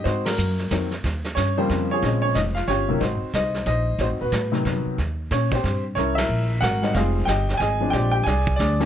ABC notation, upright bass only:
X:1
M:3/4
L:1/8
Q:"Swing" 1/4=183
K:Ebmix
V:1 name="Upright bass" clef=bass
A,,2 _G,,2 F,,2 | E,,2 G,,2 F,,2 | B,,,2 F,,,2 G,,,2 | A,,, z C,,2 B,,,2 |
(3=A,,, ^F,,, E,,, =A,,2 ^F,, z | E,,2 B,,2 G,,2 | C,,2 B,,,2 ^G,,,2 | F,,,2 G,,,2 A,,,2 |
B,,,2 C,,2 =D,,2 |]